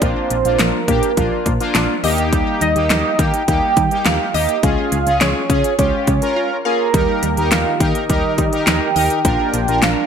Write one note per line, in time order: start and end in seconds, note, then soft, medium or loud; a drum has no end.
0.02 0.15 A#1 loud
0.02 0.20 F3 medium
0.02 0.37 A#3 medium
0.02 0.37 D4 medium
0.02 0.37 F4 medium
0.02 0.61 C5 loud
0.02 kick loud
0.02 closed hi-hat medium
0.30 0.44 A#1 loud
0.30 0.49 F3 medium
0.30 closed hi-hat medium
0.45 0.58 A#1 loud
0.45 0.80 A#3 medium
0.45 0.80 D4 medium
0.45 0.80 F4 medium
0.45 closed hi-hat medium
0.59 0.72 A#1 loud
0.59 0.77 F3 medium
0.59 1.75 A#4 medium
0.59 snare loud
0.59 clap medium
0.59 closed hi-hat medium
0.88 1.01 A#2 loud
0.88 1.06 A#3 medium
0.88 1.12 A#3 medium
0.88 1.12 D4 medium
0.88 1.12 G4 medium
0.88 kick loud
0.88 closed hi-hat medium
1.03 closed hi-hat medium
1.17 1.30 A#1 loud
1.17 1.35 F3 medium
1.17 1.52 A#3 medium
1.17 1.52 D4 medium
1.17 1.52 F4 medium
1.17 kick medium
1.17 closed hi-hat medium
1.46 1.59 A#2 loud
1.46 1.64 F3 medium
1.46 kick medium
1.46 closed hi-hat medium
1.60 1.96 A#3 medium
1.60 1.96 D4 medium
1.60 1.96 F4 loud
1.60 closed hi-hat medium
1.75 1.88 A#1 loud
1.75 1.93 D4 medium
1.75 snare loud
1.75 clap medium
1.75 closed hi-hat medium
2.04 2.43 D#2 loud
2.04 2.62 A#3 loud
2.04 2.62 D#4 loud
2.04 2.62 G4 loud
2.04 2.22 D#5 medium
2.04 open hi-hat medium
2.18 closed hi-hat soft
2.33 2.51 G3 medium
2.33 kick loud
2.33 closed hi-hat medium
2.61 2.74 D#2 loud
2.61 2.79 G3 medium
2.61 3.21 D#5 loud
2.61 closed hi-hat medium
2.76 2.89 D#2 loud
2.76 3.11 A#3 medium
2.76 3.11 D#4 medium
2.76 3.11 G4 medium
2.76 closed hi-hat medium
2.90 3.03 D#2 loud
2.90 3.08 G3 medium
2.90 snare loud
2.90 clap medium
2.90 closed hi-hat medium
3.19 3.32 D#3 loud
3.19 3.42 A#3 medium
3.19 3.37 A#3 medium
3.19 3.42 D#4 medium
3.19 3.42 G4 medium
3.19 3.47 G5 loud
3.19 kick loud
3.19 closed hi-hat medium
3.34 closed hi-hat medium
3.48 3.61 D#2 loud
3.48 3.66 G3 medium
3.48 3.83 A#3 medium
3.48 3.83 D#4 medium
3.48 3.83 G4 medium
3.48 4.07 G5 loud
3.48 kick medium
3.48 closed hi-hat medium
3.77 3.90 D#3 loud
3.77 3.95 G3 medium
3.77 kick medium
3.77 closed hi-hat medium
3.91 4.26 A#3 medium
3.91 4.26 D#4 medium
3.91 4.26 G4 medium
3.91 closed hi-hat soft
4.05 4.19 D#2 loud
4.05 4.24 D#4 loud
4.05 4.36 F5 loud
4.05 snare loud
4.05 clap medium
4.05 closed hi-hat medium
4.34 4.47 D#2 loud
4.34 4.58 A#3 medium
4.34 4.58 D#4 medium
4.34 4.58 G4 medium
4.34 4.52 D#5 medium
4.34 4.65 D#5 loud
4.34 open hi-hat medium
4.49 closed hi-hat medium
4.63 4.76 C#2 loud
4.63 4.81 G#3 medium
4.63 4.98 C#4 medium
4.63 4.98 F4 medium
4.63 4.98 G#4 medium
4.63 5.20 F5 loud
4.63 kick loud
4.63 closed hi-hat medium
4.92 5.05 C#2 loud
4.92 5.10 G#3 medium
4.92 closed hi-hat medium
5.06 5.20 C#2 loud
5.06 5.42 C#4 medium
5.06 5.42 F4 medium
5.06 5.42 G#4 medium
5.06 closed hi-hat medium
5.21 5.34 C#2 loud
5.21 5.39 G#3 medium
5.21 5.75 C#5 loud
5.21 snare loud
5.21 clap medium
5.21 closed hi-hat medium
5.50 5.63 C#3 loud
5.50 5.68 C#4 medium
5.50 5.73 C#4 medium
5.50 5.73 F4 medium
5.50 5.73 G#4 medium
5.50 kick loud
5.50 closed hi-hat medium
5.64 closed hi-hat medium
5.79 5.92 C#2 loud
5.79 5.97 G#3 medium
5.79 6.14 C#4 medium
5.79 6.14 F4 medium
5.79 6.14 G4 medium
5.79 6.61 C#5 loud
5.79 kick medium
5.79 closed hi-hat medium
6.07 6.21 C#3 loud
6.07 6.25 G#3 medium
6.07 kick medium
6.07 closed hi-hat medium
6.22 6.57 C#4 medium
6.22 6.57 F4 medium
6.22 6.57 A#4 medium
6.22 closed hi-hat soft
6.36 6.54 F4 medium
6.65 6.89 C#4 medium
6.65 6.89 F4 medium
6.65 6.89 G#4 medium
6.65 7.53 A#4 loud
6.65 6.83 F5 medium
6.94 7.07 D#2 loud
6.94 9.22 D#3 medium
6.94 7.12 G3 medium
6.94 9.22 D#4 medium
6.94 7.29 D#4 medium
6.94 9.22 G4 medium
6.94 7.29 G4 medium
6.94 9.22 A#4 medium
6.94 7.29 A#4 medium
6.94 kick loud
6.94 closed hi-hat medium
7.23 7.36 D#2 medium
7.23 7.41 G3 medium
7.23 closed hi-hat medium
7.37 7.50 D#2 loud
7.37 7.72 D#4 medium
7.37 7.72 G4 medium
7.37 7.72 A#4 medium
7.37 closed hi-hat medium
7.51 7.65 D#2 loud
7.51 7.70 G3 medium
7.51 7.82 F5 loud
7.51 snare loud
7.51 clap medium
7.51 closed hi-hat medium
7.80 7.94 D#3 loud
7.80 7.99 A#3 medium
7.80 8.04 D#4 medium
7.80 8.04 G4 medium
7.80 8.04 A#4 medium
7.80 8.69 D#5 loud
7.80 kick loud
7.80 closed hi-hat medium
7.95 closed hi-hat medium
8.09 8.23 D#2 loud
8.09 8.27 G3 medium
8.09 8.45 D#4 medium
8.09 8.45 G4 medium
8.09 8.45 A#4 medium
8.09 kick medium
8.09 closed hi-hat medium
8.38 8.51 D#3 loud
8.38 8.56 G3 medium
8.38 kick medium
8.38 closed hi-hat medium
8.53 8.88 D#4 medium
8.53 8.88 G4 medium
8.53 8.88 A#4 medium
8.53 closed hi-hat medium
8.67 8.80 D#2 loud
8.67 8.85 D#4 medium
8.67 9.24 G5 loud
8.67 snare loud
8.67 clap medium
8.67 closed hi-hat medium
8.96 9.09 D#2 loud
8.96 9.19 D#4 medium
8.96 9.19 G4 medium
8.96 9.19 A#4 medium
8.96 9.14 D#5 medium
8.96 open hi-hat medium
9.10 closed hi-hat medium
9.25 9.38 A#1 loud
9.25 9.43 F3 medium
9.25 10.06 A#3 medium
9.25 10.06 D4 medium
9.25 9.60 D4 medium
9.25 10.06 F4 medium
9.25 9.60 F4 medium
9.25 9.60 A#4 medium
9.25 9.84 G5 loud
9.25 kick loud
9.25 closed hi-hat medium
9.54 9.67 A#1 loud
9.54 9.72 F3 medium
9.54 closed hi-hat medium
9.68 9.81 A#1 loud
9.68 10.03 D4 medium
9.68 10.03 F4 medium
9.68 10.03 A#4 medium
9.68 closed hi-hat medium
9.82 9.95 A#1 loud
9.82 10.01 F3 medium
9.82 10.06 F5 loud
9.82 snare loud
9.82 clap medium
9.82 closed hi-hat medium